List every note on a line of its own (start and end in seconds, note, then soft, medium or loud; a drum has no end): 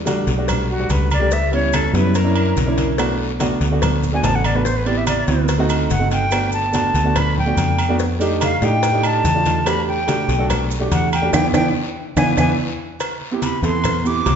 0.00 0.21 E2 medium
0.05 0.28 G3 medium
0.05 0.28 A3 medium
0.05 0.28 D4 medium
0.05 0.29 F#4 loud
0.05 cowbell medium
0.05 high conga loud
0.05 low agogo medium
0.05 short guiro medium
0.05 maracas medium
0.27 0.86 B1 loud
0.27 cowbell medium
0.27 short guiro medium
0.27 maracas soft
0.37 0.67 G3 medium
0.37 0.67 A3 medium
0.37 0.67 D4 medium
0.37 0.67 F#4 medium
0.48 cowbell loud
0.48 high conga soft
0.48 low conga medium
0.48 low agogo loud
0.48 long guiro medium
0.48 claves medium
0.48 maracas medium
0.70 0.93 F#4 medium
0.70 high conga soft
0.79 1.08 G3 medium
0.79 1.08 A3 medium
0.79 1.09 D4 medium
0.79 1.09 F#4 medium
0.90 1.88 C#2 medium
0.90 1.12 B4 medium
0.90 cowbell medium
0.90 high conga medium
0.90 low agogo medium
0.90 short guiro medium
0.90 maracas medium
1.11 1.35 D5 medium
1.11 high conga medium
1.11 low agogo loud
1.11 short guiro medium
1.11 claves medium
1.11 maracas soft
1.20 1.31 G3 medium
1.20 1.31 A3 medium
1.20 1.32 D4 medium
1.20 1.32 G4 medium
1.31 1.53 E5 loud
1.31 cowbell medium
1.31 long guiro medium
1.31 maracas medium
1.51 1.81 G3 medium
1.51 1.81 B3 medium
1.51 1.81 C#4 medium
1.51 1.82 E4 medium
1.51 1.77 C#5 medium
1.51 high conga soft
1.51 low agogo medium
1.73 1.95 A4 medium
1.73 cowbell medium
1.73 high conga loud
1.73 low agogo loud
1.73 short guiro medium
1.73 claves medium
1.73 maracas medium
1.93 2.52 F#2 loud
1.93 2.14 G3 medium
1.93 2.15 B3 medium
1.93 2.15 C#4 medium
1.93 2.15 E4 medium
1.93 2.17 B4 medium
1.93 cowbell medium
1.93 short guiro medium
1.93 maracas soft
2.15 2.99 A#4 medium
2.15 cowbell loud
2.15 high conga soft
2.15 low agogo medium
2.15 long guiro medium
2.15 maracas medium
2.24 2.54 A#3 medium
2.24 2.54 C#4 medium
2.24 2.54 D4 medium
2.24 2.55 E4 medium
2.36 high conga soft
2.36 low agogo loud
2.36 claves medium
2.57 3.55 B1 medium
2.57 cowbell medium
2.57 high conga medium
2.57 short guiro medium
2.57 maracas medium
2.66 2.88 A#3 medium
2.66 2.89 C#4 medium
2.66 2.89 D4 medium
2.66 2.89 E4 medium
2.78 cowbell medium
2.78 high conga medium
2.78 low agogo medium
2.78 short guiro medium
2.78 maracas soft
2.98 3.27 A3 medium
2.98 3.28 B3 medium
2.98 3.28 D4 medium
2.98 3.28 F#4 loud
2.98 cowbell loud
2.98 high conga soft
2.98 low agogo loud
2.98 long guiro medium
2.98 claves medium
2.98 maracas medium
3.20 high conga soft
3.39 3.62 A3 medium
3.39 3.62 B3 medium
3.39 3.62 D4 medium
3.39 3.63 F#4 loud
3.39 cowbell medium
3.39 high conga loud
3.39 low agogo medium
3.39 short guiro medium
3.39 maracas medium
3.61 4.20 D2 loud
3.61 cowbell medium
3.61 high conga soft
3.61 short guiro medium
3.61 maracas soft
3.71 4.01 A3 medium
3.71 4.01 B3 medium
3.71 4.01 D4 medium
3.71 4.01 F#4 medium
3.81 cowbell loud
3.81 high conga soft
3.81 low conga medium
3.81 low agogo loud
3.81 long guiro medium
3.81 claves medium
3.81 maracas medium
4.03 high conga soft
4.03 low conga medium
4.03 maracas medium
4.12 4.42 A3 medium
4.12 4.42 B3 medium
4.12 4.43 D4 medium
4.12 4.43 F#4 medium
4.12 4.25 G#5 medium
4.23 5.22 A1 medium
4.23 4.37 A5 loud
4.23 cowbell medium
4.23 high conga medium
4.23 low timbale medium
4.23 low agogo medium
4.23 short guiro medium
4.23 maracas medium
4.35 4.47 F#5 medium
4.44 4.57 D5 medium
4.44 high conga medium
4.44 low agogo loud
4.44 short guiro medium
4.44 claves medium
4.44 maracas soft
4.54 4.65 A3 medium
4.54 4.65 B3 medium
4.54 4.66 D4 medium
4.54 4.66 F#4 medium
4.54 4.67 B4 medium
4.65 4.78 C5 medium
4.65 cowbell loud
4.65 high conga soft
4.65 long guiro medium
4.65 maracas medium
4.76 4.88 B4 medium
4.85 5.15 B3 medium
4.85 5.16 C4 medium
4.85 5.16 E4 medium
4.85 5.16 G4 medium
4.85 4.99 D5 medium
4.85 high conga soft
4.85 low agogo medium
4.97 5.07 E5 medium
5.07 5.46 D5 medium
5.07 cowbell medium
5.07 high conga medium
5.07 low agogo loud
5.07 short guiro medium
5.07 claves medium
5.07 maracas medium
5.27 5.87 D2 loud
5.27 5.49 B3 medium
5.27 5.49 C4 medium
5.27 5.49 E4 medium
5.27 5.50 F#4 medium
5.27 cowbell medium
5.27 short guiro medium
5.27 maracas soft
5.48 cowbell loud
5.48 high conga soft
5.48 low agogo medium
5.48 long guiro medium
5.48 maracas medium
5.58 5.88 A3 medium
5.58 5.88 C4 medium
5.58 5.89 D#4 medium
5.58 5.89 F#4 loud
5.69 high conga soft
5.69 low agogo loud
5.69 claves medium
5.69 maracas medium
5.90 6.89 G1 medium
5.90 6.11 F#5 medium
5.90 cowbell medium
5.90 high conga medium
5.90 short guiro medium
5.90 maracas medium
5.99 6.22 A3 medium
5.99 6.22 C4 medium
5.99 6.23 D#4 medium
5.99 6.23 F#4 medium
6.11 6.51 G5 medium
6.11 cowbell medium
6.11 low agogo medium
6.11 short guiro medium
6.11 maracas soft
6.30 6.61 A3 medium
6.30 6.61 B3 medium
6.30 6.62 D4 medium
6.30 6.62 F#4 medium
6.30 cowbell loud
6.30 high conga soft
6.30 low agogo loud
6.30 long guiro medium
6.30 claves medium
6.30 maracas medium
6.52 7.19 A5 medium
6.52 high conga soft
6.52 maracas medium
6.72 6.95 A3 medium
6.72 6.95 B3 medium
6.72 6.96 D4 medium
6.72 6.96 F#4 medium
6.72 cowbell medium
6.72 high conga medium
6.72 low agogo medium
6.72 short guiro medium
6.72 maracas medium
6.94 7.53 D2 medium
6.94 cowbell medium
6.94 short guiro medium
6.94 maracas soft
7.04 7.34 A3 medium
7.04 7.34 B3 medium
7.04 7.35 D4 medium
7.04 7.35 F#4 medium
7.16 7.38 B5 loud
7.16 cowbell loud
7.16 high conga soft
7.16 low conga medium
7.16 low agogo loud
7.16 long guiro medium
7.16 claves medium
7.16 maracas medium
7.38 7.96 G5 medium
7.38 high conga soft
7.38 low conga medium
7.46 7.76 A3 medium
7.46 7.76 B3 medium
7.46 7.77 D4 medium
7.46 7.77 F#4 medium
7.57 8.56 F2 medium
7.57 cowbell medium
7.57 high conga medium
7.57 low agogo medium
7.57 short guiro medium
7.57 maracas medium
7.79 low agogo loud
7.79 short guiro medium
7.79 claves medium
7.79 maracas soft
7.88 7.99 A3 medium
7.88 7.99 B3 medium
7.88 8.00 D4 medium
7.88 8.00 F#4 medium
7.99 cowbell loud
7.99 high conga soft
7.99 long guiro medium
7.99 maracas medium
8.19 8.49 A3 medium
8.19 8.49 D4 medium
8.19 8.50 D#4 medium
8.19 8.50 G4 loud
8.19 high conga soft
8.19 low agogo medium
8.19 maracas medium
8.41 8.66 F5 medium
8.41 cowbell medium
8.41 high conga loud
8.41 low agogo loud
8.41 short guiro medium
8.41 claves medium
8.41 maracas medium
8.61 9.21 A2 loud
8.61 8.84 A3 medium
8.61 8.84 D4 medium
8.61 8.85 D#4 medium
8.61 8.85 G4 loud
8.61 9.08 G5 medium
8.61 cowbell medium
8.61 short guiro medium
8.61 maracas soft
8.83 cowbell loud
8.83 high conga soft
8.83 low agogo medium
8.83 long guiro medium
8.83 maracas medium
8.92 9.22 A3 medium
8.92 9.23 D4 medium
8.92 9.23 D#4 medium
8.92 9.23 G4 medium
9.03 9.69 A5 loud
9.03 high conga soft
9.03 low agogo loud
9.03 claves medium
9.03 maracas medium
9.24 10.23 E2 medium
9.24 cowbell medium
9.24 high conga medium
9.24 short guiro medium
9.24 maracas medium
9.34 9.57 A3 medium
9.34 9.57 D4 medium
9.34 9.57 D#4 medium
9.34 9.58 F4 medium
9.45 cowbell medium
9.45 high conga medium
9.45 low agogo medium
9.45 short guiro medium
9.45 maracas soft
9.65 9.95 A3 medium
9.65 9.96 D4 medium
9.65 9.96 F#4 medium
9.65 9.96 G4 medium
9.65 9.88 B5 loud
9.65 cowbell loud
9.65 high conga soft
9.65 low agogo loud
9.65 long guiro medium
9.65 claves medium
9.65 maracas medium
9.88 10.47 G5 medium
9.88 high conga soft
10.07 10.30 A3 medium
10.07 10.30 D4 medium
10.07 10.31 F#4 medium
10.07 10.31 G4 medium
10.07 cowbell medium
10.07 high conga loud
10.07 low agogo medium
10.07 short guiro medium
10.07 maracas medium
10.28 10.88 B1 loud
10.28 cowbell medium
10.28 short guiro medium
10.28 maracas soft
10.38 10.68 A3 medium
10.38 10.69 D4 medium
10.38 10.69 F#4 medium
10.38 10.69 A4 loud
10.50 cowbell loud
10.50 high conga soft
10.50 low conga medium
10.50 low agogo loud
10.50 long guiro medium
10.50 claves medium
10.50 maracas medium
10.71 high conga soft
10.71 maracas medium
10.80 11.10 A3 medium
10.80 11.10 D4 medium
10.80 11.10 F#4 medium
10.80 11.11 G4 medium
10.91 11.31 E2 loud
10.91 11.12 F#5 medium
10.91 cowbell medium
10.91 high conga medium
10.91 low agogo medium
10.91 short guiro medium
10.91 maracas medium
11.12 11.33 G5 medium
11.12 low agogo loud
11.12 short guiro medium
11.12 claves medium
11.12 maracas soft
11.22 11.33 A3 medium
11.22 11.31 D4 medium
11.22 11.34 F#4 medium
11.22 11.34 G4 medium
11.33 11.49 E2 loud
11.33 11.47 B3 loud
11.33 11.47 D4 loud
11.33 11.47 E4 loud
11.33 11.48 G5 loud
11.33 cowbell loud
11.33 high conga loud
11.33 high timbale loud
11.33 long guiro loud
11.33 claves loud
11.33 maracas loud
11.53 11.69 E2 loud
11.53 11.68 B3 medium
11.53 11.68 D4 loud
11.53 11.68 E4 loud
11.53 11.69 G5 loud
11.53 cowbell loud
11.53 high conga loud
11.53 high timbale loud
11.53 claves loud
11.53 maracas loud
12.16 12.32 E2 loud
12.16 12.31 B3 loud
12.16 12.31 D4 loud
12.16 12.31 E4 loud
12.16 12.31 G#5 loud
12.16 cowbell loud
12.16 high conga loud
12.16 high timbale loud
12.16 long guiro loud
12.16 claves loud
12.16 maracas loud
12.37 12.53 E2 loud
12.37 12.51 B3 loud
12.37 12.51 D4 loud
12.37 12.52 E4 loud
12.37 12.52 G#5 loud
12.37 cowbell loud
12.37 high conga loud
12.37 high timbale loud
12.37 long guiro loud
12.37 claves loud
12.37 maracas loud
13.00 cowbell loud
13.00 high conga soft
13.00 low agogo loud
13.00 long guiro medium
13.00 claves medium
13.00 maracas medium
13.21 high conga soft
13.31 13.54 B3 medium
13.31 13.54 C4 medium
13.31 13.54 E4 medium
13.31 13.55 G4 medium
13.42 13.63 B5 medium
13.42 cowbell medium
13.42 high conga medium
13.42 low agogo medium
13.42 short guiro medium
13.42 maracas medium
13.62 14.22 E2 medium
13.62 13.92 B3 medium
13.62 13.93 C4 medium
13.62 13.93 E4 medium
13.62 13.93 A4 medium
13.62 14.08 C6 loud
13.62 cowbell medium
13.62 short guiro medium
13.62 maracas soft
13.84 cowbell loud
13.84 high conga soft
13.84 low conga medium
13.84 low agogo loud
13.84 long guiro medium
13.84 claves medium
13.84 maracas medium
14.04 14.27 B3 medium
14.04 14.27 C4 medium
14.04 14.28 E4 medium
14.04 14.28 G4 medium
14.04 14.36 D6 loud
14.04 high conga soft
14.04 maracas medium
14.26 14.36 C2 medium
14.26 cowbell medium
14.26 high conga medium
14.26 low timbale medium
14.26 low agogo medium
14.26 short guiro medium
14.26 maracas medium